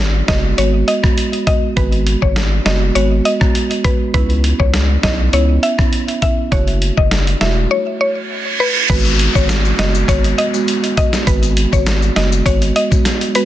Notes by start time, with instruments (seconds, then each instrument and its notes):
Already playing: sub bass G#1, marimba G#3 B3 F#4
0.28 sub bass F#1, marimba G#3 B3 F#4, synth pluck D#5, kick, snare, closed hi-hat
0.58 sub bass G#1, marimba G#3 B3 F#4, synth pluck C#5, closed hi-hat
0.88 synth pluck D#5, closed hi-hat
1.03 marimba G#3 B3 F#4, kick, cross-stick
1.18 closed hi-hat
1.33 closed hi-hat
1.47 marimba G#3 B3 F#4, synth pluck D#5, kick, closed hi-hat
1.76 sub bass G#1, marimba G#3 B3 F#4, synth pluck B4, kick, closed hi-hat
1.92 closed hi-hat
2.07 closed hi-hat
2.22 sub bass G#1, synth pluck C#5, kick
2.36 snare, closed hi-hat
2.65 sub bass F#1, marimba G#3 B3 F#4, synth pluck D#5, snare, closed hi-hat
2.95 sub bass G#1, marimba G#3 B3 F#4, synth pluck C#5, closed hi-hat
3.25 synth pluck D#5, closed hi-hat
3.40 marimba G#3 B3 F#4, kick, cross-stick
3.55 closed hi-hat
3.71 closed hi-hat
3.84 marimba G#3 B3 F#4, synth pluck B4, kick, closed hi-hat
4.14 sub bass C#2, marimba B3 C#4 E4, synth pluck B4, kick, closed hi-hat
4.30 closed hi-hat
4.44 closed hi-hat
4.60 sub bass C#2, synth pluck C#5, kick
4.74 snare, closed hi-hat
5.03 sub bass B1, marimba B3 C#4 E4, synth pluck D#5, kick, snare, closed hi-hat
5.33 sub bass C#2, marimba B3 C#4 E4, synth pluck C#5, closed hi-hat
5.63 synth pluck E5, closed hi-hat
5.78 marimba B3 C#4 E4, kick, cross-stick
5.93 closed hi-hat
6.08 closed hi-hat
6.22 marimba B3 C#4 E4, synth pluck E5, kick, closed hi-hat
6.51 sub bass F#1, marimba A3 E4 F#4, synth pluck C#5, kick, closed hi-hat
6.68 closed hi-hat
6.82 closed hi-hat
6.97 sub bass F#1, synth pluck D#5, kick
7.11 snare, closed hi-hat
7.27 closed hi-hat
7.41 sub bass E1, marimba A3 E4 F#4, synth pluck E5, snare, closed hi-hat
7.71 synth pluck C#5, reverse cymbal
8.01 synth pluck C#5
8.60 synth pluck B4
8.90 sub bass G#1, marimba G#3 B3 F#4, synth pluck B4, kick, closed hi-hat, crash, downlifter, maracas
9.05 closed hi-hat, maracas
9.19 closed hi-hat, maracas
9.35 sub bass G#1, marimba G#3 B3 F#4, synth pluck C#5, kick, maracas
9.49 snare, closed hi-hat, maracas
9.65 maracas
9.78 sub bass F#1, marimba G#3 B3 F#4, synth pluck D#5, snare, closed hi-hat
9.95 maracas
10.08 sub bass G#1, marimba G#3 B3 F#4, synth pluck C#5, kick, closed hi-hat, maracas
10.24 closed hi-hat, maracas
10.38 synth pluck D#5, closed hi-hat
10.54 marimba G#3 B3 F#4, maracas
10.68 closed hi-hat, maracas
10.84 closed hi-hat, maracas
10.97 marimba G#3 B3 F#4, synth pluck D#5, kick, closed hi-hat, maracas
11.13 snare, maracas
11.27 sub bass G#1, marimba G#3 B3 F#4, synth pluck B4, kick, closed hi-hat, maracas
11.43 closed hi-hat, maracas
11.57 closed hi-hat, maracas
11.72 sub bass G#1, marimba G#3 B3 F#4, synth pluck C#5, kick, maracas
11.86 snare, closed hi-hat, maracas
12.02 maracas
12.16 sub bass F#1, marimba G#3 B3 F#4, synth pluck D#5, snare, closed hi-hat
12.32 maracas
12.46 sub bass G#1, marimba G#3 B3 F#4, synth pluck C#5, kick, closed hi-hat, maracas
12.62 closed hi-hat, maracas
12.76 synth pluck D#5, closed hi-hat
12.91 marimba G#3 B3 F#4, kick, maracas
13.05 snare, closed hi-hat, maracas
13.21 closed hi-hat, maracas
13.35 marimba G#3 B3 F#4, synth pluck B4, closed hi-hat, maracas